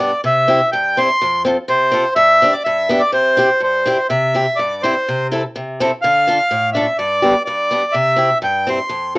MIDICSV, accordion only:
0, 0, Header, 1, 2, 480
1, 0, Start_track
1, 0, Key_signature, 0, "major"
1, 0, Tempo, 481928
1, 240, Time_signature, 2, 2, 24, 8
1, 9147, End_track
2, 0, Start_track
2, 0, Title_t, "Accordion"
2, 0, Program_c, 0, 21
2, 0, Note_on_c, 0, 74, 65
2, 210, Note_off_c, 0, 74, 0
2, 257, Note_on_c, 0, 76, 90
2, 698, Note_off_c, 0, 76, 0
2, 718, Note_on_c, 0, 79, 69
2, 976, Note_on_c, 0, 84, 89
2, 978, Note_off_c, 0, 79, 0
2, 1420, Note_off_c, 0, 84, 0
2, 1686, Note_on_c, 0, 72, 78
2, 2126, Note_off_c, 0, 72, 0
2, 2149, Note_on_c, 0, 76, 114
2, 2507, Note_on_c, 0, 74, 79
2, 2524, Note_off_c, 0, 76, 0
2, 2617, Note_off_c, 0, 74, 0
2, 2632, Note_on_c, 0, 76, 86
2, 2991, Note_on_c, 0, 74, 87
2, 3005, Note_off_c, 0, 76, 0
2, 3100, Note_off_c, 0, 74, 0
2, 3121, Note_on_c, 0, 72, 92
2, 3603, Note_off_c, 0, 72, 0
2, 3618, Note_on_c, 0, 72, 76
2, 4054, Note_off_c, 0, 72, 0
2, 4081, Note_on_c, 0, 76, 90
2, 4541, Note_on_c, 0, 74, 76
2, 4573, Note_off_c, 0, 76, 0
2, 4805, Note_off_c, 0, 74, 0
2, 4807, Note_on_c, 0, 72, 69
2, 5252, Note_off_c, 0, 72, 0
2, 5994, Note_on_c, 0, 77, 103
2, 6674, Note_off_c, 0, 77, 0
2, 6706, Note_on_c, 0, 76, 74
2, 6946, Note_off_c, 0, 76, 0
2, 6957, Note_on_c, 0, 74, 89
2, 7396, Note_off_c, 0, 74, 0
2, 7420, Note_on_c, 0, 74, 80
2, 7889, Note_on_c, 0, 76, 88
2, 7921, Note_off_c, 0, 74, 0
2, 8350, Note_off_c, 0, 76, 0
2, 8403, Note_on_c, 0, 79, 78
2, 8657, Note_off_c, 0, 79, 0
2, 8662, Note_on_c, 0, 84, 75
2, 9101, Note_off_c, 0, 84, 0
2, 9147, End_track
0, 0, End_of_file